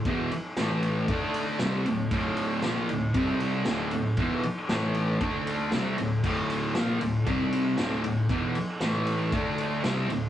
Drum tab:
CC |--------|--------|--------|x-------|
RD |xxxxxxxx|xxxxxxxx|xxxxxxxx|-xxxxxxx|
SD |--o---o-|--o---o-|--o---o-|--o---o-|
BD |o---o---|o---o---|o---o---|o---o---|

CC |--------|
RD |xxxxxxxx|
SD |--o---o-|
BD |o---o---|